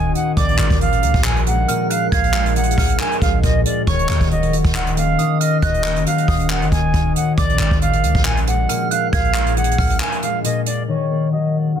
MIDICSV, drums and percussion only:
0, 0, Header, 1, 2, 480
1, 0, Start_track
1, 0, Key_signature, -6, "minor"
1, 0, Tempo, 437956
1, 404, Time_signature, 4, 2, 24, 8
1, 12933, End_track
2, 0, Start_track
2, 0, Title_t, "Drums"
2, 165, Note_on_c, 9, 42, 82
2, 274, Note_off_c, 9, 42, 0
2, 405, Note_on_c, 9, 36, 116
2, 405, Note_on_c, 9, 42, 81
2, 514, Note_off_c, 9, 36, 0
2, 514, Note_off_c, 9, 42, 0
2, 532, Note_on_c, 9, 42, 54
2, 641, Note_off_c, 9, 42, 0
2, 644, Note_on_c, 9, 39, 98
2, 645, Note_on_c, 9, 42, 83
2, 753, Note_off_c, 9, 39, 0
2, 754, Note_off_c, 9, 42, 0
2, 772, Note_on_c, 9, 36, 97
2, 772, Note_on_c, 9, 42, 56
2, 881, Note_off_c, 9, 42, 0
2, 882, Note_off_c, 9, 36, 0
2, 885, Note_on_c, 9, 42, 71
2, 994, Note_off_c, 9, 42, 0
2, 1012, Note_on_c, 9, 42, 58
2, 1121, Note_off_c, 9, 42, 0
2, 1124, Note_on_c, 9, 42, 74
2, 1234, Note_off_c, 9, 42, 0
2, 1251, Note_on_c, 9, 36, 100
2, 1252, Note_on_c, 9, 42, 50
2, 1361, Note_off_c, 9, 36, 0
2, 1361, Note_off_c, 9, 42, 0
2, 1364, Note_on_c, 9, 42, 74
2, 1365, Note_on_c, 9, 39, 119
2, 1474, Note_off_c, 9, 39, 0
2, 1474, Note_off_c, 9, 42, 0
2, 1491, Note_on_c, 9, 42, 54
2, 1601, Note_off_c, 9, 42, 0
2, 1604, Note_on_c, 9, 42, 80
2, 1714, Note_off_c, 9, 42, 0
2, 1844, Note_on_c, 9, 42, 82
2, 1954, Note_off_c, 9, 42, 0
2, 2084, Note_on_c, 9, 42, 87
2, 2194, Note_off_c, 9, 42, 0
2, 2325, Note_on_c, 9, 36, 112
2, 2325, Note_on_c, 9, 42, 80
2, 2434, Note_off_c, 9, 36, 0
2, 2434, Note_off_c, 9, 42, 0
2, 2452, Note_on_c, 9, 42, 53
2, 2561, Note_off_c, 9, 42, 0
2, 2564, Note_on_c, 9, 39, 99
2, 2565, Note_on_c, 9, 42, 77
2, 2673, Note_off_c, 9, 39, 0
2, 2674, Note_off_c, 9, 42, 0
2, 2692, Note_on_c, 9, 42, 55
2, 2801, Note_off_c, 9, 42, 0
2, 2804, Note_on_c, 9, 42, 60
2, 2885, Note_off_c, 9, 42, 0
2, 2885, Note_on_c, 9, 42, 62
2, 2965, Note_off_c, 9, 42, 0
2, 2965, Note_on_c, 9, 42, 62
2, 3044, Note_on_c, 9, 36, 98
2, 3045, Note_on_c, 9, 46, 75
2, 3074, Note_off_c, 9, 42, 0
2, 3154, Note_off_c, 9, 36, 0
2, 3154, Note_off_c, 9, 46, 0
2, 3172, Note_on_c, 9, 42, 49
2, 3282, Note_off_c, 9, 42, 0
2, 3285, Note_on_c, 9, 39, 121
2, 3285, Note_on_c, 9, 42, 72
2, 3394, Note_off_c, 9, 42, 0
2, 3395, Note_off_c, 9, 39, 0
2, 3412, Note_on_c, 9, 42, 54
2, 3522, Note_off_c, 9, 42, 0
2, 3525, Note_on_c, 9, 36, 95
2, 3525, Note_on_c, 9, 42, 75
2, 3634, Note_off_c, 9, 36, 0
2, 3634, Note_off_c, 9, 42, 0
2, 3765, Note_on_c, 9, 36, 99
2, 3765, Note_on_c, 9, 42, 80
2, 3874, Note_off_c, 9, 36, 0
2, 3874, Note_off_c, 9, 42, 0
2, 4005, Note_on_c, 9, 42, 84
2, 4114, Note_off_c, 9, 42, 0
2, 4245, Note_on_c, 9, 36, 114
2, 4245, Note_on_c, 9, 42, 78
2, 4354, Note_off_c, 9, 36, 0
2, 4354, Note_off_c, 9, 42, 0
2, 4372, Note_on_c, 9, 42, 53
2, 4482, Note_off_c, 9, 42, 0
2, 4484, Note_on_c, 9, 39, 99
2, 4485, Note_on_c, 9, 42, 80
2, 4593, Note_off_c, 9, 39, 0
2, 4594, Note_off_c, 9, 42, 0
2, 4612, Note_on_c, 9, 36, 95
2, 4612, Note_on_c, 9, 42, 57
2, 4722, Note_off_c, 9, 36, 0
2, 4722, Note_off_c, 9, 42, 0
2, 4725, Note_on_c, 9, 42, 73
2, 4834, Note_off_c, 9, 42, 0
2, 4852, Note_on_c, 9, 42, 58
2, 4961, Note_off_c, 9, 42, 0
2, 4964, Note_on_c, 9, 42, 72
2, 5074, Note_off_c, 9, 42, 0
2, 5091, Note_on_c, 9, 36, 103
2, 5092, Note_on_c, 9, 42, 51
2, 5201, Note_off_c, 9, 36, 0
2, 5202, Note_off_c, 9, 42, 0
2, 5205, Note_on_c, 9, 39, 118
2, 5205, Note_on_c, 9, 42, 75
2, 5314, Note_off_c, 9, 42, 0
2, 5315, Note_off_c, 9, 39, 0
2, 5332, Note_on_c, 9, 42, 55
2, 5441, Note_off_c, 9, 42, 0
2, 5445, Note_on_c, 9, 42, 77
2, 5554, Note_off_c, 9, 42, 0
2, 5685, Note_on_c, 9, 42, 80
2, 5794, Note_off_c, 9, 42, 0
2, 5925, Note_on_c, 9, 42, 89
2, 6034, Note_off_c, 9, 42, 0
2, 6164, Note_on_c, 9, 36, 117
2, 6165, Note_on_c, 9, 42, 80
2, 6274, Note_off_c, 9, 36, 0
2, 6274, Note_off_c, 9, 42, 0
2, 6292, Note_on_c, 9, 42, 55
2, 6401, Note_off_c, 9, 42, 0
2, 6404, Note_on_c, 9, 39, 99
2, 6404, Note_on_c, 9, 42, 82
2, 6513, Note_off_c, 9, 39, 0
2, 6514, Note_off_c, 9, 42, 0
2, 6532, Note_on_c, 9, 42, 55
2, 6641, Note_off_c, 9, 42, 0
2, 6645, Note_on_c, 9, 42, 74
2, 6754, Note_off_c, 9, 42, 0
2, 6772, Note_on_c, 9, 42, 57
2, 6882, Note_off_c, 9, 42, 0
2, 6884, Note_on_c, 9, 36, 97
2, 6885, Note_on_c, 9, 46, 78
2, 6994, Note_off_c, 9, 36, 0
2, 6994, Note_off_c, 9, 46, 0
2, 7012, Note_on_c, 9, 42, 49
2, 7122, Note_off_c, 9, 42, 0
2, 7125, Note_on_c, 9, 39, 119
2, 7235, Note_off_c, 9, 39, 0
2, 7252, Note_on_c, 9, 42, 55
2, 7362, Note_off_c, 9, 42, 0
2, 7365, Note_on_c, 9, 36, 95
2, 7365, Note_on_c, 9, 42, 79
2, 7474, Note_off_c, 9, 36, 0
2, 7475, Note_off_c, 9, 42, 0
2, 7605, Note_on_c, 9, 36, 98
2, 7605, Note_on_c, 9, 42, 82
2, 7714, Note_off_c, 9, 36, 0
2, 7714, Note_off_c, 9, 42, 0
2, 7845, Note_on_c, 9, 42, 85
2, 7955, Note_off_c, 9, 42, 0
2, 8085, Note_on_c, 9, 36, 111
2, 8085, Note_on_c, 9, 42, 79
2, 8194, Note_off_c, 9, 36, 0
2, 8194, Note_off_c, 9, 42, 0
2, 8212, Note_on_c, 9, 42, 52
2, 8322, Note_off_c, 9, 42, 0
2, 8324, Note_on_c, 9, 39, 100
2, 8325, Note_on_c, 9, 42, 78
2, 8434, Note_off_c, 9, 39, 0
2, 8434, Note_off_c, 9, 42, 0
2, 8452, Note_on_c, 9, 36, 97
2, 8452, Note_on_c, 9, 42, 53
2, 8562, Note_off_c, 9, 36, 0
2, 8562, Note_off_c, 9, 42, 0
2, 8565, Note_on_c, 9, 42, 74
2, 8674, Note_off_c, 9, 42, 0
2, 8692, Note_on_c, 9, 42, 57
2, 8801, Note_off_c, 9, 42, 0
2, 8805, Note_on_c, 9, 42, 71
2, 8914, Note_off_c, 9, 42, 0
2, 8931, Note_on_c, 9, 36, 104
2, 8932, Note_on_c, 9, 42, 50
2, 9041, Note_off_c, 9, 36, 0
2, 9041, Note_off_c, 9, 42, 0
2, 9045, Note_on_c, 9, 39, 117
2, 9045, Note_on_c, 9, 42, 75
2, 9154, Note_off_c, 9, 42, 0
2, 9155, Note_off_c, 9, 39, 0
2, 9172, Note_on_c, 9, 42, 57
2, 9282, Note_off_c, 9, 42, 0
2, 9285, Note_on_c, 9, 42, 76
2, 9395, Note_off_c, 9, 42, 0
2, 9525, Note_on_c, 9, 42, 80
2, 9635, Note_off_c, 9, 42, 0
2, 9765, Note_on_c, 9, 42, 85
2, 9874, Note_off_c, 9, 42, 0
2, 10005, Note_on_c, 9, 36, 114
2, 10005, Note_on_c, 9, 42, 78
2, 10114, Note_off_c, 9, 36, 0
2, 10114, Note_off_c, 9, 42, 0
2, 10132, Note_on_c, 9, 42, 54
2, 10241, Note_off_c, 9, 42, 0
2, 10244, Note_on_c, 9, 39, 96
2, 10244, Note_on_c, 9, 42, 77
2, 10353, Note_off_c, 9, 39, 0
2, 10354, Note_off_c, 9, 42, 0
2, 10372, Note_on_c, 9, 42, 55
2, 10481, Note_off_c, 9, 42, 0
2, 10484, Note_on_c, 9, 42, 60
2, 10564, Note_off_c, 9, 42, 0
2, 10564, Note_on_c, 9, 42, 65
2, 10644, Note_off_c, 9, 42, 0
2, 10644, Note_on_c, 9, 42, 63
2, 10724, Note_on_c, 9, 36, 98
2, 10724, Note_on_c, 9, 46, 78
2, 10754, Note_off_c, 9, 42, 0
2, 10833, Note_off_c, 9, 36, 0
2, 10834, Note_off_c, 9, 46, 0
2, 10851, Note_on_c, 9, 42, 51
2, 10961, Note_off_c, 9, 42, 0
2, 10964, Note_on_c, 9, 42, 75
2, 10965, Note_on_c, 9, 39, 120
2, 11074, Note_off_c, 9, 39, 0
2, 11074, Note_off_c, 9, 42, 0
2, 11091, Note_on_c, 9, 42, 55
2, 11201, Note_off_c, 9, 42, 0
2, 11204, Note_on_c, 9, 42, 74
2, 11314, Note_off_c, 9, 42, 0
2, 11444, Note_on_c, 9, 42, 80
2, 11554, Note_off_c, 9, 42, 0
2, 11685, Note_on_c, 9, 42, 86
2, 11794, Note_off_c, 9, 42, 0
2, 12933, End_track
0, 0, End_of_file